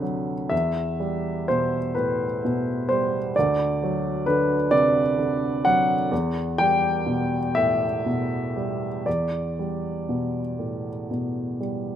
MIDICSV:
0, 0, Header, 1, 2, 480
1, 0, Start_track
1, 0, Key_signature, 1, "minor"
1, 0, Tempo, 953895
1, 261, Time_signature, 6, 3, 24, 8
1, 1216, Tempo, 930233
1, 3616, Tempo, 978793
1, 4096, Tempo, 1011804
1, 5952, End_track
2, 0, Start_track
2, 0, Title_t, "Upright piano"
2, 0, Program_c, 0, 0
2, 0, Control_c, 0, 64, 127
2, 0, Note_on_c, 0, 38, 47
2, 0, Note_on_c, 0, 48, 28
2, 0, Note_on_c, 0, 50, 30
2, 0, Note_on_c, 0, 54, 36
2, 11, Note_off_c, 0, 54, 0
2, 11, Note_on_c, 0, 54, 30
2, 161, Note_off_c, 0, 50, 0
2, 238, Note_off_c, 0, 38, 0
2, 249, Note_on_c, 0, 76, 66
2, 257, Note_on_c, 0, 40, 42
2, 258, Note_off_c, 0, 54, 0
2, 269, Control_c, 0, 64, 0
2, 272, Note_off_c, 0, 48, 0
2, 352, Control_c, 0, 64, 127
2, 503, Note_on_c, 0, 55, 34
2, 735, Note_off_c, 0, 76, 0
2, 746, Note_on_c, 0, 72, 62
2, 753, Note_on_c, 0, 47, 32
2, 885, Note_off_c, 0, 55, 0
2, 979, Note_on_c, 0, 71, 52
2, 982, Note_off_c, 0, 72, 0
2, 987, Note_on_c, 0, 45, 31
2, 1128, Note_off_c, 0, 47, 0
2, 1220, Note_off_c, 0, 45, 0
2, 1232, Note_on_c, 0, 47, 37
2, 1458, Note_off_c, 0, 71, 0
2, 1458, Note_on_c, 0, 72, 60
2, 1471, Note_on_c, 0, 55, 35
2, 1610, Note_off_c, 0, 47, 0
2, 1675, Note_off_c, 0, 40, 0
2, 1698, Note_off_c, 0, 72, 0
2, 1702, Note_on_c, 0, 74, 73
2, 1704, Note_off_c, 0, 55, 0
2, 1705, Control_c, 0, 64, 0
2, 1717, Note_on_c, 0, 38, 45
2, 1787, Control_c, 0, 64, 127
2, 1948, Note_on_c, 0, 54, 37
2, 2169, Note_on_c, 0, 71, 66
2, 2171, Note_off_c, 0, 74, 0
2, 2178, Note_on_c, 0, 50, 41
2, 2318, Note_off_c, 0, 54, 0
2, 2399, Note_on_c, 0, 74, 82
2, 2400, Note_on_c, 0, 48, 38
2, 2406, Note_off_c, 0, 71, 0
2, 2553, Note_off_c, 0, 50, 0
2, 2641, Note_off_c, 0, 48, 0
2, 2644, Note_on_c, 0, 50, 40
2, 2879, Note_off_c, 0, 74, 0
2, 2883, Note_on_c, 0, 78, 81
2, 2889, Note_on_c, 0, 54, 45
2, 3027, Note_off_c, 0, 50, 0
2, 3112, Note_off_c, 0, 38, 0
2, 3124, Note_off_c, 0, 78, 0
2, 3124, Note_on_c, 0, 40, 50
2, 3127, Note_off_c, 0, 54, 0
2, 3132, Control_c, 0, 64, 0
2, 3216, Control_c, 0, 64, 127
2, 3366, Note_on_c, 0, 79, 85
2, 3377, Note_on_c, 0, 55, 43
2, 3614, Note_on_c, 0, 47, 39
2, 3763, Note_off_c, 0, 55, 0
2, 3852, Note_on_c, 0, 76, 77
2, 3853, Note_off_c, 0, 79, 0
2, 3862, Note_on_c, 0, 45, 34
2, 3998, Note_off_c, 0, 47, 0
2, 4100, Note_off_c, 0, 45, 0
2, 4103, Note_on_c, 0, 47, 37
2, 4341, Note_on_c, 0, 55, 33
2, 4483, Note_off_c, 0, 47, 0
2, 4557, Note_off_c, 0, 40, 0
2, 4575, Note_off_c, 0, 76, 0
2, 4577, Note_on_c, 0, 74, 55
2, 4579, Note_on_c, 0, 40, 39
2, 4580, Note_off_c, 0, 55, 0
2, 4584, Control_c, 0, 64, 0
2, 4672, Control_c, 0, 64, 127
2, 4830, Note_on_c, 0, 55, 30
2, 5066, Note_on_c, 0, 47, 29
2, 5209, Note_off_c, 0, 55, 0
2, 5302, Note_on_c, 0, 45, 24
2, 5446, Note_off_c, 0, 47, 0
2, 5540, Note_off_c, 0, 45, 0
2, 5549, Note_on_c, 0, 47, 26
2, 5779, Note_off_c, 0, 74, 0
2, 5784, Note_on_c, 0, 55, 26
2, 5926, Note_off_c, 0, 47, 0
2, 5952, Note_off_c, 0, 40, 0
2, 5952, Note_off_c, 0, 55, 0
2, 5952, End_track
0, 0, End_of_file